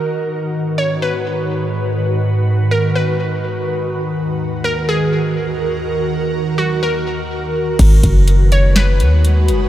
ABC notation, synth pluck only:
X:1
M:4/4
L:1/8
Q:1/4=124
K:G#m
V:1 name="Synth pluck"
z3 c B4 | z3 A B4 | z3 A G4 | z3 F A2 z2 |
z3 c B4 |]